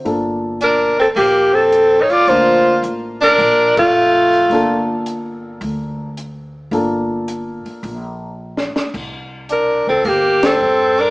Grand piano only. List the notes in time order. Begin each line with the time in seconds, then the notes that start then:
Already playing: C5
0.05 A#3 D4 F4 A4
2.29 A#3 D4 F4 A#4
4.51 A#3 D4 F4 A4
6.72 A#3 D4 F4 A4